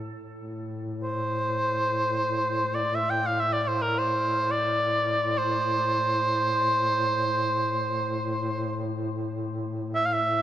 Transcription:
Already playing: A2
0.34 A2
1.03 C5
2.75 D5
2.95 E5
3.10 G5
3.27 F5
3.40 E5
3.53 D5
3.62 D5
3.68 C5
3.82 A#4
3.98 C5
4.51 D5
5.38 C5
9.95 E5
10.06 F5
10.13 E5

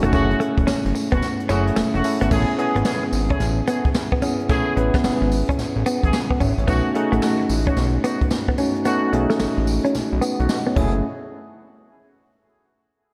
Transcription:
Already playing: A3 C#4 D#4 F#4
0.03 E1 A3 B3 D#4 F#4, closed hi-hat
0.12 F#1 A3 C#4 E4 F#4 G#4, kick, closed hi-hat, tambourine
0.30 closed hi-hat
0.40 A3, closed hi-hat
0.57 E1, muted clean electric guitar stroke, kick, closed hi-hat
0.67 F#1 C#4, snare, tambourine
0.85 F#1, closed hi-hat
0.95 muted clean electric guitar stroke, open hi-hat, tambourine
1.12 F#1 A3 B3 C#4 E4 F#4, kick, closed hi-hat
1.22 snare, closed hi-hat, tambourine
1.40 closed hi-hat
1.49 F#1 A3 C#4 E4 F#4 G#4, closed hi-hat, tambourine
1.67 closed hi-hat
1.76 E1 A3, snare, tambourine
1.94 E1 A3 C#4 E4 F#4, muted clean electric guitar stroke, closed hi-hat
2.04 A3 C#4 E4 A4, open hi-hat, tambourine
2.21 G#1 A3 B3 C#4 E4 F#4, closed hi-hat
2.30 A1 A3 B3 C#4 E4 G#4, kick, crash, tambourine
2.58 A3 B3 C#4 E4 G#4, muted clean electric guitar stroke, closed hi-hat
2.75 G#1 B3, closed hi-hat
2.85 A3 B3 C#4 E4 G#4, snare, closed hi-hat, tambourine
3.03 muted clean electric guitar stroke
3.12 G#1, open hi-hat, tambourine
3.30 A3 C#4 E4 G#4, kick, closed hi-hat
3.40 A1, snare, closed hi-hat, tambourine
3.67 A3 B3 C#4 E4 G#4, closed hi-hat, tambourine
3.85 kick, closed hi-hat
3.94 muted clean electric guitar stroke, snare, closed hi-hat, tambourine
4.12 B3, kick
4.22 B3 C#4 E4 G#4, closed hi-hat, tambourine
4.40 closed hi-hat
4.49 A3 B3 C#4 E4 G#4, kick, closed hi-hat, tambourine
4.76 A1 B3 C#4 E4 B4, muted clean electric guitar stroke, closed hi-hat
4.94 B3, kick, snare, closed hi-hat
5.04 G#1 B3, snare, closed hi-hat, tambourine
5.21 G#1, muted clean electric guitar stroke
5.31 open hi-hat, tambourine
5.49 C#4, kick, closed hi-hat
5.58 A1, snare, closed hi-hat, tambourine
5.76 A1
5.86 B3, closed hi-hat, tambourine
6.03 A1 A3 C#4 E4 G#4, kick, closed hi-hat
6.13 muted clean electric guitar stroke, snare, closed hi-hat, tambourine
6.30 B3 F#5, kick
6.40 G#1 C#4 E5, kick, closed hi-hat, tambourine
6.58 A1 C#5, closed hi-hat
6.67 B1 A3 B3 C#4 D#4 F#4, kick, closed hi-hat, tambourine
6.95 A3 B3 C#4 D#4 F#4 G#4, muted clean electric guitar stroke, closed hi-hat
7.12 A1 A3, closed hi-hat
7.22 A3 B3 D#4 F#4, snare, closed hi-hat, tambourine
7.40 muted clean electric guitar stroke
7.49 A1, open hi-hat, tambourine
7.67 A3 B3 C#4 D#4 F#4, kick, closed hi-hat
7.76 B1, snare, closed hi-hat, tambourine
8.03 A3 B3 D#4 F#4, closed hi-hat, tambourine
8.21 kick, closed hi-hat
8.31 muted clean electric guitar stroke, snare, closed hi-hat, tambourine
8.48 B3, kick
8.58 A3 C#4 D#4 F#4, closed hi-hat, tambourine
8.75 closed hi-hat
8.85 A3 B3 C#4 D#4 F#4, closed hi-hat, tambourine
9.13 B1 A3 C#4 D#4 G#4, muted clean electric guitar stroke, closed hi-hat
9.30 A3, snare, closed hi-hat
9.39 A1 A3, snare, closed hi-hat, tambourine
9.57 A1, muted clean electric guitar stroke
9.67 open hi-hat, tambourine
9.85 C#4, closed hi-hat
9.94 B1, snare, closed hi-hat, tambourine
10.12 B1
10.21 B3, closed hi-hat, tambourine
10.39 B1 A3 B3 D#4 F#4, closed hi-hat
10.49 D#5 F#5, muted clean electric guitar stroke, snare, closed hi-hat, tambourine
10.67 B3 C#5
10.76 F#1 A3 C#4 E4 F#4 G#4, kick, crash

